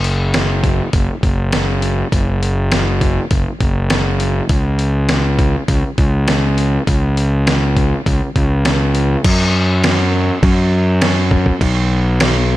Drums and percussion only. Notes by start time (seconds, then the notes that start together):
0.04 open hi-hat
0.34 snare, open hi-hat
0.64 kick, open hi-hat
0.93 kick, open hi-hat
1.23 kick, open hi-hat
1.52 snare, open hi-hat
1.82 open hi-hat
2.12 kick, open hi-hat
2.43 open hi-hat
2.72 snare, open hi-hat
3.01 kick, open hi-hat
3.31 kick, open hi-hat
3.61 kick, open hi-hat
3.90 snare, open hi-hat
4.20 open hi-hat
4.49 kick, open hi-hat
4.79 open hi-hat
5.09 snare, open hi-hat
5.39 kick, open hi-hat
5.68 kick, open hi-hat
5.98 kick, open hi-hat
6.28 snare, open hi-hat
6.58 open hi-hat
6.87 kick, open hi-hat
7.17 open hi-hat
7.47 snare, open hi-hat
7.77 kick, open hi-hat
8.06 kick, open hi-hat
8.36 kick, open hi-hat
8.65 snare, open hi-hat
8.95 open hi-hat
9.24 kick, crash
9.84 snare, crash
10.43 kick, crash
11.02 snare, crash
11.31 kick
11.46 kick
11.61 kick, crash
12.20 snare, crash